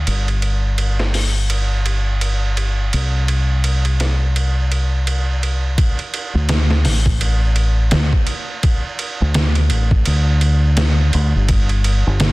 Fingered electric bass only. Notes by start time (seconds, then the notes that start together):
0.07 G1
2.94 C2
6.35 D2
6.87 A1
7.94 D2
9.22 D2
9.71 A1
10.07 D2
11.15 D2
11.35 G1
12.07 G1